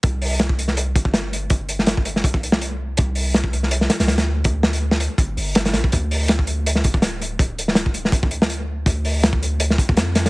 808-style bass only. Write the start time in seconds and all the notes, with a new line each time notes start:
0.04 C2
0.95 G1
2.24 C2
2.98 C2
4.00 C2
4.08 D2
5.18 G1
5.37 G1
5.74 A#1
5.93 D2
6.85 D1
8.12 D2
8.86 D2
9.89 D2
9.97 F2